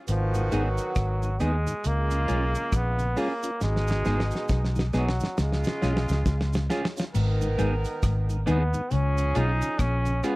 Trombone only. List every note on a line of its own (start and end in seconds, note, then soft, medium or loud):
0.10 0.55 F3 medium
0.54 1.43 F#3 medium
1.42 1.88 G#3 loud
1.87 2.77 A#3 loud
2.75 3.20 B3 loud
3.19 3.62 A#3 loud
3.63 4.67 G#3 loud
4.96 5.36 F#3 medium
5.41 6.68 G#3 medium
8.48 8.94 B3 loud
8.92 9.38 C#4 loud
9.37 9.82 D#4 loud
9.81 10.26 C#4 loud
10.24 10.36 B3 medium